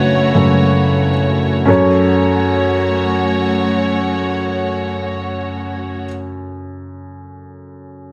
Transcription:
0, 0, Header, 1, 3, 480
1, 0, Start_track
1, 0, Key_signature, 3, "minor"
1, 0, Tempo, 500000
1, 7796, End_track
2, 0, Start_track
2, 0, Title_t, "String section"
2, 0, Program_c, 0, 48
2, 0, Note_on_c, 0, 57, 58
2, 0, Note_on_c, 0, 66, 59
2, 0, Note_on_c, 0, 73, 65
2, 1575, Note_off_c, 0, 57, 0
2, 1575, Note_off_c, 0, 66, 0
2, 1575, Note_off_c, 0, 73, 0
2, 1609, Note_on_c, 0, 66, 53
2, 1611, Note_on_c, 0, 57, 54
2, 1613, Note_on_c, 0, 73, 61
2, 5809, Note_off_c, 0, 66, 0
2, 5811, Note_off_c, 0, 57, 0
2, 5813, Note_off_c, 0, 73, 0
2, 7796, End_track
3, 0, Start_track
3, 0, Title_t, "Upright piano"
3, 0, Program_c, 1, 0
3, 0, Control_c, 1, 64, 127
3, 0, Note_on_c, 1, 42, 37
3, 0, Note_on_c, 1, 49, 38
3, 0, Note_on_c, 1, 57, 44
3, 0, Note_on_c, 1, 61, 62
3, 0, Note_on_c, 1, 62, 60
3, 0, Note_on_c, 1, 64, 63
3, 0, Note_on_c, 1, 69, 76
3, 0, Note_on_c, 1, 71, 92
3, 0, Note_on_c, 1, 73, 93
3, 326, Note_off_c, 1, 42, 0
3, 326, Note_on_c, 1, 42, 44
3, 332, Note_off_c, 1, 49, 0
3, 332, Note_on_c, 1, 49, 44
3, 338, Note_off_c, 1, 57, 0
3, 338, Note_on_c, 1, 57, 49
3, 1052, Note_off_c, 1, 73, 0
3, 1066, Note_off_c, 1, 64, 0
3, 1574, Note_off_c, 1, 42, 0
3, 1577, Note_off_c, 1, 49, 0
3, 1580, Note_off_c, 1, 57, 0
3, 1589, Note_off_c, 1, 61, 0
3, 1589, Note_on_c, 1, 61, 60
3, 1604, Note_on_c, 1, 66, 55
3, 1612, Note_on_c, 1, 42, 64
3, 1618, Note_off_c, 1, 69, 0
3, 1618, Note_on_c, 1, 69, 56
3, 1625, Control_c, 1, 64, 0
3, 1630, Note_off_c, 1, 62, 0
3, 1634, Note_off_c, 1, 71, 0
3, 1634, Note_on_c, 1, 73, 71
3, 1804, Control_c, 1, 64, 127
3, 5789, Note_off_c, 1, 61, 0
3, 5804, Note_off_c, 1, 66, 0
3, 5813, Note_off_c, 1, 42, 0
3, 5818, Note_off_c, 1, 69, 0
3, 5834, Note_off_c, 1, 73, 0
3, 7796, End_track
0, 0, End_of_file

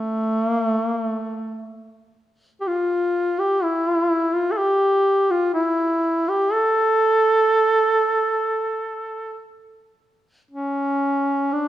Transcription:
0, 0, Header, 1, 2, 480
1, 0, Start_track
1, 0, Tempo, 961538
1, 1335, Time_signature, 4, 2, 24, 8
1, 3732, Tempo, 981997
1, 4212, Tempo, 1023891
1, 5722, End_track
2, 0, Start_track
2, 0, Title_t, "Duduk"
2, 0, Program_c, 0, 69
2, 0, Note_on_c, 0, 57, 83
2, 242, Note_off_c, 0, 57, 0
2, 242, Note_on_c, 0, 58, 83
2, 312, Note_off_c, 0, 58, 0
2, 312, Note_on_c, 0, 57, 83
2, 432, Note_off_c, 0, 57, 0
2, 432, Note_on_c, 0, 58, 83
2, 502, Note_off_c, 0, 58, 0
2, 502, Note_on_c, 0, 57, 83
2, 840, Note_off_c, 0, 57, 0
2, 1301, Note_on_c, 0, 67, 62
2, 1335, Note_on_c, 0, 65, 86
2, 1342, Note_off_c, 0, 67, 0
2, 1693, Note_on_c, 0, 67, 83
2, 1700, Note_off_c, 0, 65, 0
2, 1811, Note_on_c, 0, 64, 88
2, 1818, Note_off_c, 0, 67, 0
2, 2167, Note_on_c, 0, 65, 83
2, 2175, Note_off_c, 0, 64, 0
2, 2254, Note_on_c, 0, 69, 67
2, 2262, Note_off_c, 0, 65, 0
2, 2284, Note_on_c, 0, 67, 98
2, 2291, Note_off_c, 0, 69, 0
2, 2649, Note_on_c, 0, 65, 83
2, 2656, Note_off_c, 0, 67, 0
2, 2763, Note_off_c, 0, 65, 0
2, 2766, Note_on_c, 0, 64, 82
2, 3138, Note_on_c, 0, 67, 81
2, 3146, Note_off_c, 0, 64, 0
2, 3258, Note_on_c, 0, 69, 104
2, 3266, Note_off_c, 0, 67, 0
2, 4693, Note_off_c, 0, 69, 0
2, 5174, Note_on_c, 0, 61, 77
2, 5651, Note_on_c, 0, 62, 75
2, 5658, Note_off_c, 0, 61, 0
2, 5722, Note_off_c, 0, 62, 0
2, 5722, End_track
0, 0, End_of_file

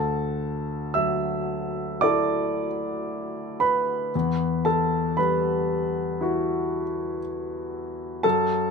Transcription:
0, 0, Header, 1, 2, 480
1, 0, Start_track
1, 0, Tempo, 1263158
1, 364, Tempo, 1067616
1, 844, Tempo, 1052632
1, 1808, Time_signature, 4, 2, 24, 8
1, 2284, Tempo, 1018676
1, 3724, Tempo, 1092896
1, 3929, End_track
2, 0, Start_track
2, 0, Title_t, "Grand piano"
2, 0, Program_c, 0, 0
2, 0, Control_c, 0, 64, 127
2, 0, Note_on_c, 0, 38, 38
2, 0, Note_on_c, 0, 69, 46
2, 0, Note_on_c, 0, 81, 61
2, 349, Note_off_c, 0, 69, 0
2, 357, Note_on_c, 0, 88, 54
2, 360, Note_on_c, 0, 76, 43
2, 363, Note_off_c, 0, 81, 0
2, 365, Note_on_c, 0, 54, 26
2, 824, Note_off_c, 0, 76, 0
2, 837, Note_on_c, 0, 86, 67
2, 840, Note_off_c, 0, 88, 0
2, 841, Note_on_c, 0, 74, 48
2, 846, Note_on_c, 0, 64, 33
2, 849, Note_on_c, 0, 69, 35
2, 1129, Note_off_c, 0, 54, 0
2, 1548, Note_off_c, 0, 74, 0
2, 1562, Note_on_c, 0, 83, 62
2, 1564, Note_off_c, 0, 86, 0
2, 1565, Note_on_c, 0, 71, 45
2, 1791, Note_off_c, 0, 64, 0
2, 1793, Note_off_c, 0, 38, 0
2, 1793, Note_off_c, 0, 69, 0
2, 1814, Note_on_c, 0, 40, 46
2, 1815, Control_c, 0, 64, 0
2, 1879, Control_c, 0, 64, 127
2, 2025, Note_off_c, 0, 71, 0
2, 2040, Note_on_c, 0, 81, 60
2, 2042, Note_off_c, 0, 83, 0
2, 2044, Note_on_c, 0, 69, 46
2, 2266, Note_off_c, 0, 69, 0
2, 2277, Note_on_c, 0, 83, 57
2, 2281, Note_off_c, 0, 81, 0
2, 2284, Note_on_c, 0, 71, 43
2, 2287, Note_on_c, 0, 55, 32
2, 2767, Note_on_c, 0, 64, 35
2, 2774, Note_on_c, 0, 66, 42
2, 3055, Note_off_c, 0, 55, 0
2, 3225, Note_off_c, 0, 71, 0
2, 3241, Note_off_c, 0, 83, 0
2, 3704, Note_off_c, 0, 64, 0
2, 3707, Note_off_c, 0, 66, 0
2, 3708, Note_off_c, 0, 40, 0
2, 3721, Note_on_c, 0, 81, 70
2, 3725, Note_on_c, 0, 69, 58
2, 3729, Note_on_c, 0, 42, 46
2, 3732, Control_c, 0, 64, 0
2, 3813, Control_c, 0, 64, 127
2, 3929, Note_off_c, 0, 42, 0
2, 3929, Note_off_c, 0, 69, 0
2, 3929, Note_off_c, 0, 81, 0
2, 3929, End_track
0, 0, End_of_file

